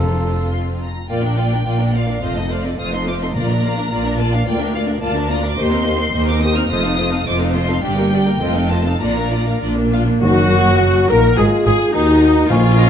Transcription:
Already playing: F1 F2 C4 F4 A4 C5
0.52 C6
0.83 A#5
1.09 A#1 A#2 A#3 F4 D5 F5 G5
1.23 D4 A#4 D5
1.38 A#3 F4 D5 F5
1.52 D4 A#4 D5
1.66 A#1 A#2 A#3 F4 D5 F5
1.80 D4 A#4 D5
1.95 A#3 F4 D5 F5
2.08 D4 A#4 D5
2.22 F1 F2 A3 F4 C5 D#5 F5
2.37 C4 D#4 A4 D#5
2.50 A3 F4 C5 D5 F5
2.64 C4 D#4 A4 D#5
2.78 F1 F2 A3 F4 C5 F5 D#6
2.93 C4 D#4 A4 D#5 C6
3.06 A3 F4 C5 F5 D6
3.21 C4 D#4 A4 D#5 C6
3.34 A#1 A#2 A#3 F4 D5 F5 A#5
3.49 D4 A#4 D5
3.63 A#3 F4 D5 F5
3.77 D4 A#4 D5
3.91 A#1 A#2 A#3 F4 D5 F5
4.05 D4 A#4 D5
4.18 A#3 F4 D5 F5 A5
4.33 D4 A#4 D5 F5
4.46 D2 A#3 F4 D5 F5 G5
4.59 D4 A#4 D5
4.74 A#3 F4 D5 F5
4.88 D4 A#4 D5
5.01 D2 A#3 F4 D5 F5 A5
5.15 D4 A#4 D5
5.30 A#3 F4 D5 F5 A#5
5.43 D4 A#4 D5 D6
5.58 D#2 A#3 G4 C5 D#5 C6
5.72 C4 D#4 A#4 C5
5.85 A#3 G4 C5 D#5
5.98 C4 D#4 A#4 C5
6.12 D#2 A#3 G4 C5 D#5
6.27 C4 D#4 A#4 C5 D6
6.41 A#3 G4 C5 D#5 D#6
6.55 C4 D#4 A#4 C5 F6
6.70 F1 F2 A3 F4 C5 D#5 D#6
6.84 C4 D#4 A4 F5
6.98 A3 F4 C5 D#5
7.12 C4 D#4 A4 F5
7.26 F1 F2 A3 F4 C5 D#5 D6
7.40 C4 D#4 A4 F5
7.54 A3 F4 C5 D#5 C6
7.69 C4 D#4 A4 F5
7.83 G1 G2 G3 D4 G4 D5 G5
7.98 A#3 G4 A#4 G5
8.13 G3 D4 G4 D5
8.27 A#3 G4 A#4 G5
8.41 F1 F2 A3 F4 C5 D#5
8.56 C4 D#4 A4 F5
8.70 A3 F4 C5 D#5 A5
8.86 C4 D#4 A4 F5
9.01 A#1 A#2 D4 F4 D5 A#5
9.16 A#3 D4 A#4 F5
9.31 D4 F4 D5
9.47 A#3 D4 A#4 F5
9.61 A#1 A#2 D4 F4 D5
9.77 A#3 D4
9.92 D4 F4 F5
10.08 A#3 D4
10.22 F#1 F#2 D#3 F#3 D#4 F#4
10.50 A#3
10.80 F#4
11.08 A#1 A#2 A#3 D#4 A#4
11.36 G#1 G#2 G#3 F4 G#4
11.65 G#1 G#2 G#3 G#4
11.93 D#2 D#3 D#4 F#4
12.49 A#1 A#2 F3 A#3 F4 F5 G#5 C#6
12.75 C#4 D#5 F5 A#5 C#6

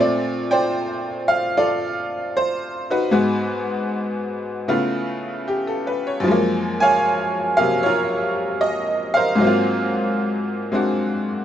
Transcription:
Already playing: A#2 A3 C4
0.01 D5
0.51 C5 D5 G5
1.28 F5
1.57 F4 A4 D5
2.37 C5
2.90 D#4 F#4 B4
3.11 G#2 G#3 B3 F#4
4.68 C#3 A3 B3 E4 F4
5.48 G4
5.67 A4
5.87 B4
6.07 C#5
6.20 F#2 F3
6.28 G#3 A#3
6.80 C#5 F5 G#5
7.57 C3 F#3 A#3 F5
7.83 F4 A#4 C#5
8.61 D#5
9.14 A#4 C5 F5
9.35 G#2 F#3
9.41 A#3 C4
9.46 F4
10.72 G#3 C4 D4 F#4

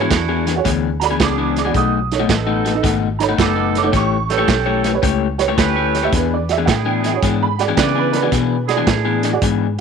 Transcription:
Already playing: D4 E4 F#4 B4
0.01 E3 B3 D4 G#4
0.11 E2, kick, snare, closed hi-hat
0.29 E3 B3 D4 G#4
0.46 E3 B3 D4 G#4 B4, snare, closed hi-hat
0.56 F#4 G#4 C#5, muted clean electric guitar stroke
0.65 D2 E3 B3 D4 G#4, kick, snare, closed hi-hat
1.00 F#4 G#4 D5 A#5, snare, closed hi-hat
1.05 B5
1.10 E3 B3 D4 G#4
1.19 C#2 E3 B3 D4 E4 G#4 D6, kick, snare, closed hi-hat
1.38 E3 B3 D4 G#4
1.55 G#4 D5 D6, snare, closed hi-hat
1.65 E3 B3 D4 F#4 G#4 D5
1.74 B1 B2 A3 D#4 F#4 D#6, kick, closed hi-hat
2.11 D#4 A4 C#5, snare, closed hi-hat
2.19 B2 A3 D#4 F#4
2.28 A1 B3 D#4 A4, kick, snare, closed hi-hat
2.47 B2 A3 D#4 F#4
2.64 B2 A3 D#4 F#4 A4 B4, snare, closed hi-hat
2.74 D#4 A4 D#5, muted clean electric guitar stroke
2.83 G#1 B2 A3 D#4 F#4, kick, snare, closed hi-hat
3.19 D#4 A4 C#5 A#5, snare, closed hi-hat
3.23 B5
3.29 B2 A3 D#4 F#4
3.37 F#1 B2 A3 B3 D#4 F#4 A4, kick, snare, closed hi-hat
3.41 D6
3.55 B2 A3 D#4 F#4
3.75 A4 C#5 D6, snare, closed hi-hat
3.83 B2 A3 D#4 F#4 A4 C#5
3.92 A1 A3 E4 G4 C#5, kick, snare, closed hi-hat
3.97 C#6
4.29 C#4 G4 A4 B4 C#5, snare, closed hi-hat
4.38 A3 E4 G4 C#5
4.48 B1, kick, snare, closed hi-hat
4.66 A3 E4 G4 C#5
4.83 A3 E4 G4 B4 C#5, snare, closed hi-hat
4.93 G4 B4 C#5, muted clean electric guitar stroke
5.02 C#2 A3 E4 G4 C#5, kick, closed hi-hat
5.38 G4 B4 C#5, snare, closed hi-hat
5.48 A3 E4 G4 C#5
5.57 D2 A3 C#4 E4 G4 B4 C#5, kick, snare, closed hi-hat
5.76 A3 E4 G4 C#5
5.93 B4 C#5, snare, closed hi-hat
6.03 A3 E4 G4 B4 C#5 E5
6.12 E2 E3 B3 D4 G#4 B4, kick, snare, closed hi-hat
6.34 D5
6.49 F#4 G#4 D5 E5, snare, closed hi-hat
6.58 E3 B3 D4 G#4
6.66 A2 D4 E4 G#4 F#5, kick, snare, closed hi-hat
6.71 G5
6.86 E3 B3 D4 G#4
7.03 E3 B3 D4 G#4 E5, snare, closed hi-hat
7.13 F#4 G#4 C#5, muted clean electric guitar stroke
7.22 G#2 E3 B3 D4 G#4, kick, snare, closed hi-hat
7.42 B5
7.58 F#4 G#4 D5 G5, snare, closed hi-hat
7.68 E3 B3 D4 G#4
7.76 C#3 E3 B3 D4 E4 G#4 B4 D5, kick, snare, closed hi-hat
7.95 E3 B3 D4 G#4 B4
8.12 G#4 A#4 D5, snare, closed hi-hat
8.17 B4
8.22 E3 B3 D4 F#4 G#4 D5
8.31 B2 E3 B3 D4 G#4, kick, snare, closed hi-hat
8.67 D4 E4 F#4 G#4 D5, snare, closed hi-hat
8.77 E3 B3 D4 G#4
8.87 A2, kick, snare, closed hi-hat
9.05 E3 B3 D4 G#4
9.23 E3 B3 D4 G#4 D5, snare, closed hi-hat
9.33 F#4 G#4 D5, muted clean electric guitar stroke
9.42 G#2 E3 B3 D4 G#4, kick, closed hi-hat

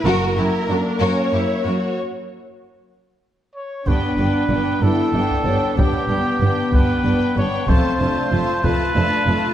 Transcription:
0.05 F#1 F#2 A#3 F#4 A#4
0.37 F#2 E4 G4
0.69 F#2 D4 F#4 A#4
1.00 F#2 C#4 F#4 A#4 C#5
1.33 F#2 E4 G4
1.64 F#2 F#4 A#4
3.56 C#5
3.87 G1 G2 B3 D4 B4 G5, taiko
4.18 G1 G2 B3 D4 G5
4.50 G1 G2 B3 D4 G5
4.81 G1 G2 B3 D4 E4 A4 G5
5.13 G1 G2 B3 D4 G5
5.31 taiko
5.45 G1 G2 B3 D4 C#5 G5
5.77 G1 G2 B3 D4 G4 G5, taiko
6.08 G1 G2 B3 D4 G5
6.41 G1 G2 B3 D4 G5
6.72 G1 G2 B3 D4 B4 G5, taiko
7.04 G1 G2 B3 D4 G5
7.36 G1 G2 B3 D4 C#5 G5
7.68 F1 F2 A3 C4 F4 C5 A5, taiko
7.98 F1 F2 A3 D4 F4 A5
8.30 F1 F2 A3 F4 A5
8.62 F1 F2 A3 F4 B4 A5, taiko
8.94 F1 F2 A3 D4 F4 A5
9.26 F1 F2 A3 F4 A5

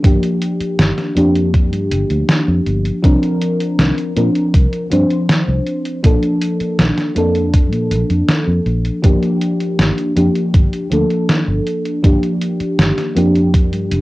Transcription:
0.03 G1 F3 A#3 D4 G4, kick, closed hi-hat
0.23 closed hi-hat
0.42 closed hi-hat
0.60 muted fingered electric bass stroke, closed hi-hat
0.79 G1, snare, closed hi-hat
0.98 snare, closed hi-hat
1.15 F2 F3 A#3 D4 G4, closed hi-hat
1.35 closed hi-hat
1.54 kick, closed hi-hat
1.73 G2, closed hi-hat
1.92 G1, closed hi-hat
2.10 D2, closed hi-hat
2.29 snare, closed hi-hat
2.48 F2
2.67 G1, closed hi-hat
2.85 closed hi-hat
3.03 C2 F3 C4 D4 A#4, kick, closed hi-hat
3.23 closed hi-hat
3.42 closed hi-hat
3.61 closed hi-hat
3.79 C2, snare, closed hi-hat
3.98 closed hi-hat
4.16 A#2 F3 C4 D4 A#4, closed hi-hat
4.35 closed hi-hat
4.54 C2, kick, closed hi-hat
4.73 closed hi-hat
4.90 G2 F3 C4 D4 C5, closed hi-hat
5.10 closed hi-hat
5.29 snare, closed hi-hat
5.48 C2
5.66 closed hi-hat
5.85 closed hi-hat
6.03 A#1 F3 A#3 D4 A4, kick, closed hi-hat
6.23 closed hi-hat
6.41 closed hi-hat
6.60 muted fingered electric bass stroke, closed hi-hat
6.79 A#1, snare, closed hi-hat
6.98 snare, closed hi-hat
7.15 F2 F3 A#3 D4 A4, closed hi-hat
7.35 closed hi-hat
7.54 kick, closed hi-hat
7.73 A#2, closed hi-hat
7.91 A#1, closed hi-hat
8.10 F2, closed hi-hat
8.29 snare, closed hi-hat
8.48 F2
8.66 A#1, closed hi-hat
8.85 closed hi-hat
9.02 G1 F3 A#3 D4 G4, kick, closed hi-hat
9.23 closed hi-hat
9.41 closed hi-hat
9.60 closed hi-hat
9.79 G1, snare, closed hi-hat
9.98 closed hi-hat
10.16 F2 F3 A#3 D4 G4, closed hi-hat
10.35 closed hi-hat
10.54 G1, kick, closed hi-hat
10.73 closed hi-hat
10.90 D2 F3 A#3 D4 A4, closed hi-hat
11.10 closed hi-hat
11.29 snare, closed hi-hat
11.48 G1
11.67 closed hi-hat
11.85 closed hi-hat
12.03 G1 F3 A#3 D4 G4, kick, closed hi-hat
12.23 closed hi-hat
12.42 closed hi-hat
12.60 muted fingered electric bass stroke, closed hi-hat
12.79 G1, snare, closed hi-hat
12.98 snare, closed hi-hat
13.15 F2 F3 A#3 D4 G4, closed hi-hat
13.35 closed hi-hat
13.54 kick, closed hi-hat
13.73 G2, closed hi-hat
13.91 G1, closed hi-hat

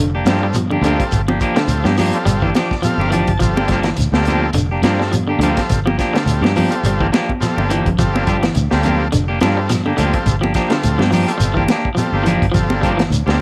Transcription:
Already playing: F1
0.00 D3
0.15 A#3 D4 G4
0.25 G2 F3 G3 A#3 C4 D4 F4 A4, snare, closed hi-hat, high conga, shekere
0.29 G4
0.43 G3
0.54 F3, closed hi-hat, high conga, shekere
0.70 D3 A#3 D4 G4, low conga
0.81 D2 D3 F3 G3 A#3 C4 F4 A4, closed hi-hat, low conga, shekere
0.85 D4 G4
1.00 kick, closed hi-hat
1.12 G1, kick, closed hi-hat, high conga, shekere
1.28 F3 A#3 D4 G4, high conga
1.40 F3 A#3 D4 G4, kick, closed hi-hat, shekere
1.54 D3 G3 C4 F4 A4, snare, closed hi-hat
1.68 D2, closed hi-hat, high conga, shekere
1.84 G2 F3 A#3 D4 G4, snare, high conga
1.97 F3 A#3 D4 G4, snare, open hi-hat, low conga, shekere
2.13 G3 C4 F4 A4, closed hi-hat
2.25 G1 G3, closed hi-hat, high conga, shekere
2.42 E3 A#3 D4 G4, kick
2.55 F3 D4 G4 D5, muted clean electric guitar stroke, snare, closed hi-hat, high conga, shekere
2.71 kick, snare
2.82 F3 G3 C4 F4 A4 F5, muted fingered electric bass stroke, closed hi-hat, high conga, shekere
2.98 G1 A#3 D4 G4, high conga, low conga
3.11 E3 F3 D4 G4 A5, muted clean electric guitar stroke, closed hi-hat, low conga, shekere
3.27 G1, kick, closed hi-hat
3.39 G1 F3 G3 C4 F4 A4, kick, closed hi-hat, high conga, shekere
3.57 A#3 D4 G4, high conga
3.68 F3 G3 A#3 D4 G4, kick, snare, closed hi-hat
3.72 shekere
3.83 E3, snare, closed hi-hat
3.97 D2, closed hi-hat, high conga, shekere
4.12 D2 G3 A#3 C4 D4 F4 G4 A4, snare, high conga
4.25 F3 A#3 D4 G4, closed hi-hat, high conga, low conga, shekere
4.53 F1 D3, closed hi-hat, high conga
4.57 shekere
4.71 A#3 D4 G4
4.82 G2 F3 G3 A#3 C4 D4 F4 G4 A4, snare, closed hi-hat, high conga, shekere
5.00 G3, snare
5.12 F3, closed hi-hat, high conga, shekere
5.27 D3 A#3 D4 G4
5.39 D2 D3 F3 G3 A#3 C4 D4 F4, closed hi-hat
5.43 G4 A4, low conga, shekere
5.57 kick, snare, closed hi-hat
5.69 G1, kick, closed hi-hat, high conga, shekere
5.86 F3 A#3 G4, high conga
5.98 F3 A#3 D4 G4, kick, snare, closed hi-hat, shekere
6.13 D3 G3 C4 F4 A4, snare, closed hi-hat
6.26 D2, closed hi-hat, high conga, shekere
6.41 G2 F3 A#3 D4 G4, snare, high conga
6.56 F3 A#3 D4 G4, open hi-hat, high conga, low conga, shekere
6.69 G3 C4 F4 A4, closed hi-hat
6.83 G1 G3, closed hi-hat, high conga, shekere
7.00 E3 A#3 D4 G4, kick
7.12 F3 A#3 D4 G4, snare, closed hi-hat, high conga, shekere
7.29 kick, high conga
7.40 F3 G3 C4 F4 A4, muted fingered electric bass stroke, snare, closed hi-hat, high conga, shekere
7.57 G1 A#3 D4 G4, low conga
7.69 E3 F3 A#3 D4 G4, closed hi-hat, low conga, shekere
7.85 G1, kick, closed hi-hat, low conga
7.98 G1 F3 G3 C4 F4 A4, kick, closed hi-hat, high conga, shekere
8.14 A#3 D4 G4, high conga
8.26 F3 G3 D4 G4, muted clean electric guitar stroke, kick, closed hi-hat, shekere
8.43 E3, snare, closed hi-hat
8.55 D2, closed hi-hat, high conga, shekere
8.71 D2 G3 A#3 C4 D4 F4 G4 A4, snare, high conga
8.83 A#3 D4 G4, muted clean electric guitar stroke, closed hi-hat, high conga, low conga, shekere
9.12 F1 D3, closed hi-hat, high conga, shekere
9.28 A#3 D4 G4
9.41 G2 F3 G3 A#3 C4 D4 F4 G4 A4, snare, closed hi-hat, high conga, shekere
9.57 G3
9.69 F3, snare, closed hi-hat, high conga, shekere
9.86 D3 A#3 D4 G4, high conga
9.96 D2 D3 F3 G3 A#3 C4 D4 F4 G4 A4, closed hi-hat, low conga, shekere
10.13 kick, closed hi-hat
10.26 G1, kick, closed hi-hat, high conga, shekere
10.41 F3 A#3 D4 G4, high conga
10.54 F3 A#3 D4 G4, kick, snare, closed hi-hat, shekere
10.68 D3 G3 C4 F4 A4, snare, closed hi-hat
10.83 D2, closed hi-hat, high conga, shekere
10.98 G2 F3 A#3 D4 G4, snare, high conga
11.11 F3 A#3 D4 G4, open hi-hat, low conga, shekere
11.26 G3 C4 F4 A4, closed hi-hat
11.38 G1, muted clean electric guitar stroke, closed hi-hat, high conga, shekere
11.54 E3 D4 G4, kick
11.58 A#3
11.68 A#3 D4 G4, muted clean electric guitar stroke, snare, closed hi-hat, high conga, shekere
11.85 kick
11.95 F3 G3 C4 F4 A4, muted fingered electric bass stroke, closed hi-hat, high conga, shekere
12.12 G1 A#3 D4 G4
12.24 E3 F3 A#3 G4, closed hi-hat, low conga, shekere
12.28 D4
12.42 G1, kick, closed hi-hat
12.52 G1 F3 G3 C4 F4 A4, kick, closed hi-hat, high conga
12.56 shekere
12.70 A#3 D4, muted clean electric guitar stroke, high conga
12.81 F3 G3 A#3 D4 G4, kick, closed hi-hat, shekere
12.97 E3, snare, closed hi-hat
13.10 D2, closed hi-hat, high conga, shekere
13.26 D2 G3 A#3 C4 D4 F4 G4 A4, snare, high conga

